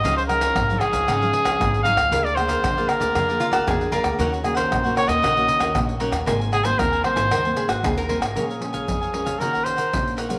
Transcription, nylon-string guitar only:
\new Staff \with { instrumentName = "Nylon-string guitar" } { \time 4/4 \key aes \mixolydian \tempo 4 = 115 << { <f aes ees'>16 r16 <f aes ees'>8 r16 <f aes ees'>4 <f aes ees'>8. <f aes ees'>16 r16 <f aes ees'>8 | <bes f' aes'>16 r16 <bes f' aes'>8. <bes f' aes'>4 <bes f' aes'>8. <bes f' aes'>8 <bes f' aes'>8 | <bes des' ges'>8 <bes des' ges'>8. <bes des' ges'>4 <bes des' ges'>8. <bes des' ges'>16 r16 <bes des' ges'>16 r16 | <ees bes c'>8. <ees bes c'>8. <ees bes c'>8 r16 <ees bes c'>8. <ees bes c'>8 <ees bes c'>16 r16 |
\key bes \minor <f aes des'>16 r16 <f aes des'>8. r16 <f aes des'>8 <bes des' ges'>8. r16 <bes des' ges'>8 r16 <aes des' f'>16 | } \\ { des4 aes,4 des4 aes,4 | d4 d4 d4 d4 | ees4 bes,4 ees4 bes,4 | aes,4 ees4 aes,4 ees4 |
bes,4 f,4 ees4 bes,4 | } >> }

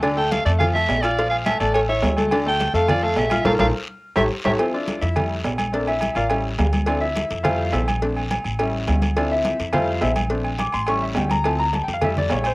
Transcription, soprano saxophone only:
\new Staff \with { instrumentName = "Soprano saxophone" } { \time 4/4 \key d \minor \tempo 4 = 210 r8 g''8 f''8 d''8 f''8 e''4 d''8~ | d''8 f''8 e''8 d''8 cis''8 cis''4 r8 | r8 g''4 f''8 d''8 f''8 e''4 | f''8 f''8 r4. e''8 r8 e''8 |
r1 | r1 | r1 | r1 |
r1 | r1 | r1 | }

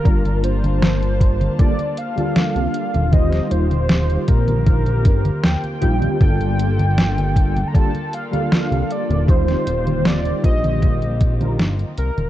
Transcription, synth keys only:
\new Staff \with { instrumentName = "Synth keys" } { \time 4/4 \key g \minor \tempo 4 = 78 <g bes d' f' bes'>2 <g bes d' f' a'>16 r8 <g bes d' f' a'>4~ <g bes d' f' a'>16 | <g c' ees' f' c''>2~ <g c' ees' f' c''>8. r8. <g c' ees' f' g'>8 | <g bes d' f' a'>2 <g bes d' f' a'>16 r8 <g bes d' f' a'>4~ <g bes d' f' a'>16 | <g c' ees' f' c''>2~ <g c' ees' f' c''>8. <g c' ees' f' bes'>16 r4 | }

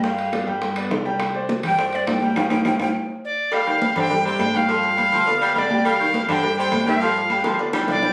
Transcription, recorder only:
\new Staff \with { instrumentName = "Recorder" } { \time 4/4 \key g \phrygian \tempo 4 = 207 r1 | r1 | r2. d''4 | \key c \minor f''4. g''4 g''4 f''8~ |
f''2. d''4 | f''4. g''4 g''4 f''8~ | f''2 r4 d''4 | }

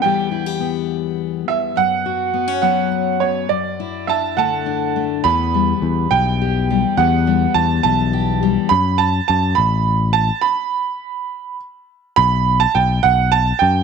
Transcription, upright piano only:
\new Staff \with { instrumentName = "Upright piano" } { \time 6/8 \key e \dorian \tempo 4. = 69 g''4 r4. e''8 | fis''4. fis''4 cis''8 | d''4 <e'' a''>8 <fis'' a''>4. | b''4. g''4. |
fis''4 a''8 a''4. | b''8 a''8 a''8 b''4 a''8 | b''2 r4 | b''8. a''16 g''8 fis''8 a''8 g''8 | }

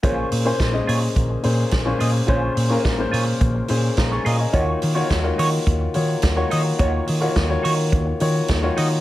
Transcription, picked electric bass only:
\new Staff \with { instrumentName = "Picked electric bass" } { \clef bass \time 4/4 \key bes \minor \tempo 4 = 106 bes,,8 bes,8 bes,,8 bes,8 bes,,8 bes,8 bes,,8 bes,8 | bes,,8 bes,8 bes,,8 bes,8 bes,,8 bes,8 bes,,8 bes,8 | ees,8 ees8 ees,8 ees8 ees,8 ees8 ees,8 ees8 | ees,8 ees8 ees,8 ees8 ees,8 ees8 ees,8 ees8 | }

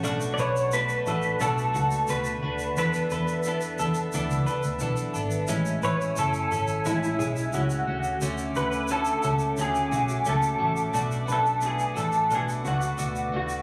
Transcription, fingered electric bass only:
\new Staff \with { instrumentName = "Fingered electric bass" } { \clef bass \time 4/4 \key d \lydian \tempo 4 = 88 b,,8 b,,4 a,,8 b,,8 cis,8 d,8 d,8 | e,8 e,4 e,8 d,16 cis,16 r16 d,16 b,,16 r16 gis,,8 | a,,8 a,,8 fis,,8 gis,,8 a,,8 b,,8 cis,8 d,8 | d,8 d,4 cis,8 d,8 b,,8 cis,8 a,,8 |
b,,8 b,,4 a,,8 b,,8 cis,8 d,8 d,8 | }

